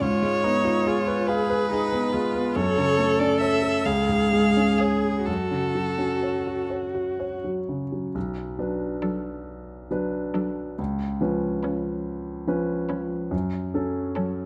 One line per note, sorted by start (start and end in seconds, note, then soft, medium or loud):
0.01 2.51 G#2 soft
0.01 0.46 F4 soft
0.01 1.29 C#5 medium
0.22 0.57 G#3 soft
0.44 0.78 B3 soft
0.44 0.89 D#4 soft
0.65 0.99 F4 soft
0.86 1.30 F4 soft
0.86 1.20 G#4 soft
1.07 1.41 B4 soft
1.28 1.71 G#4 soft
1.28 2.57 B4 medium
1.28 1.62 F5 soft
1.50 1.84 B4 soft
1.71 2.14 D#4 soft
1.71 2.05 G#4 soft
1.92 2.26 B3 soft
2.13 2.47 G#3 soft
2.13 2.58 F4 soft
2.35 2.56 B3 soft
2.55 3.82 F#2 soft
2.55 3.87 A4 soft
2.55 3.21 C#5 medium
2.78 3.11 C#3 soft
2.98 3.32 A3 soft
3.19 3.54 C#4 soft
3.19 3.40 D5 medium
3.40 3.77 C#5 soft
3.40 3.87 E5 medium
3.63 3.85 A4 soft
3.85 5.23 C#2 soft
3.85 5.26 G#4 soft
3.85 4.79 F5 medium
4.09 4.46 G#2 soft
4.33 4.70 G#3 soft
4.57 4.94 C#4 soft
4.78 5.27 G#4 soft
4.78 5.18 C#5 soft
5.04 5.27 G#4 soft
5.26 8.11 F#2 soft
5.26 7.40 F#4 soft
5.26 6.70 A4 soft
5.51 5.89 C#3 soft
5.75 6.13 F#3 soft
5.98 6.36 C#4 soft
6.23 6.61 C#5 soft
6.47 6.85 F#4 soft
6.70 7.10 C#5 soft
6.94 7.34 F#4 soft
7.20 7.59 C#5 soft
7.44 7.83 F#3 soft
7.69 8.06 C#3 soft
7.92 8.15 F#3 soft
8.15 8.57 B1 soft
8.59 9.87 F#3 soft
8.59 9.87 D4 soft
8.59 9.88 B4 soft
9.02 9.36 F#3 soft
9.02 9.36 D4 soft
9.02 9.36 A4 soft
9.91 10.74 F#3 soft
9.91 10.75 D4 soft
9.91 10.75 B4 soft
10.34 10.67 F#3 soft
10.34 10.67 D4 soft
10.34 10.68 A4 soft
10.78 11.20 C#2 soft
11.21 12.44 F3 soft
11.21 12.44 C#4 soft
11.21 12.44 B4 soft
11.63 11.95 F3 soft
11.63 11.95 C#4 soft
11.63 11.95 B4 soft
12.47 13.28 F3 soft
12.47 13.28 C#4 soft
12.47 13.28 B4 soft
12.89 13.22 F3 soft
12.89 13.21 C#4 soft
12.89 13.21 B4 soft
13.31 13.73 F#2 soft
13.74 14.46 F#3 soft
13.74 14.46 C#4 soft
13.74 14.46 A4 soft
14.16 14.46 F#3 soft
14.16 14.46 C#4 soft
14.16 14.46 A4 soft